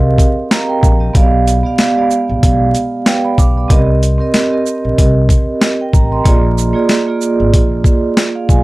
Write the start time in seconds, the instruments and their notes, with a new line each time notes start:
Already playing: upright bass C2, vibraphone C4 G4 A#4 D#5 F5
0.18 kick, closed hi-hat, shaker
0.51 vibraphone A#5, snare, closed hi-hat
0.69 vibraphone A#4 G5
0.83 upright bass A#1, kick, shaker
1.00 vibraphone G4 D#5
1.13 upright bass B1, vibraphone B3 G4 D5 F5, kick, closed hi-hat
1.47 closed hi-hat, shaker
1.63 vibraphone B3 G4 D5 F5
1.78 snare, closed hi-hat
1.96 vibraphone G#3 G4 D5 F5
2.02 vibraphone B3
2.11 shaker
2.29 upright bass A#1
2.43 upright bass B1, kick, closed hi-hat
2.75 closed hi-hat, shaker
3.06 vibraphone B4 G5, snare, closed hi-hat
3.25 vibraphone D5 B5
3.38 upright bass B1, vibraphone F5 D6, kick, shaker
3.57 vibraphone D5 B5
3.68 upright bass C2, vibraphone C4 G4 A#4 D#5, kick, closed hi-hat
4.03 closed hi-hat, shaker
4.18 vibraphone C4 G4 A#4 D#5
4.34 snare, closed hi-hat
4.51 vibraphone C4 G4 A#4 D#5
4.66 shaker
4.84 upright bass A#1
4.98 upright bass C2, kick, closed hi-hat
5.29 kick, closed hi-hat, shaker
5.61 vibraphone G4 D#5, snare, closed hi-hat
5.81 vibraphone A#4 G5
5.93 upright bass A1, vibraphone A#5, kick, shaker
6.12 vibraphone D#5 C6
6.24 upright bass A#1, vibraphone A#3 F4 G#4 D5, kick, closed hi-hat
6.58 shaker
6.73 vibraphone A#3 F4 G#4 D5
6.89 snare, closed hi-hat
7.07 vibraphone A#3 F4 G#4 D5
7.21 shaker
7.40 upright bass G#1
7.54 upright bass A#1, kick, closed hi-hat
7.84 kick, shaker
8.17 vibraphone F4 D5, snare, closed hi-hat
8.35 vibraphone G#4 F5
8.49 upright bass B1, vibraphone G#5, kick, shaker